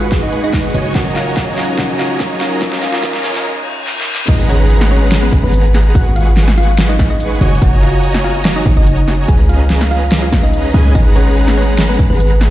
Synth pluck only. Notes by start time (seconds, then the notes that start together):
0.23 D#4 D#5
0.44 D#4 D#5
0.95 F#4 F#5
1.16 F4 F5
1.58 F4 F5
1.79 F#4 F#5
1.99 F4 F5
2.41 F4 F5
2.62 F4 F5
2.83 F4 F5
3.03 F4 F5
3.24 F4 F5
4.29 D#4 D#5
4.49 C#4 C#5
4.91 C#4 C#5
5.23 B3 B4
5.43 B3 B4
5.95 F#4 F#5
6.16 F4 F5
6.58 F4 F5
6.89 D#4 D#5
7.10 D#4 D#5
7.62 F#4 F#5
7.83 F4 F5
8.24 F4 F5
8.56 D#4 D#5
8.77 D#4 D#5
9.28 G#4 G#5
9.49 F4 F5
9.91 F4 F5
10.22 F4 F5
10.43 D#4 D#5
10.95 D#4 D#5
11.16 C#4 C#5
11.58 C#4 C#5
11.89 B3 B4
12.10 B3 B4